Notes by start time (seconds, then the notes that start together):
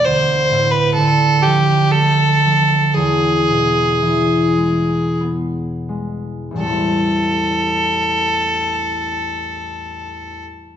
Already playing: A3 B3
0.05 D2 C5
0.51 A2
0.71 B4
0.94 D3 A4
1.42 F3 G4
1.92 A3 A4
2.45 F3
2.93 E2 G#4
3.50 B2
4.01 E3
4.57 G#3
5.21 B3
5.89 G#3
6.51 A1 E2
6.58 G3 A4
6.62 A3 C4
6.70 E4